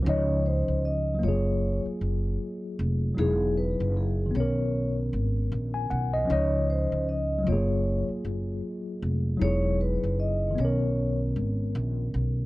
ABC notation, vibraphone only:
X:1
M:4/4
L:1/16
Q:"Swing 16ths" 1/4=77
K:Gblyd
V:1 name="Vibraphone"
d2 c2 e2 d3 z6 z | ^G2 =B2 G2 d3 z6 z | d2 c2 e2 d3 z6 z | d2 =B2 ^d2 _d3 z6 z |]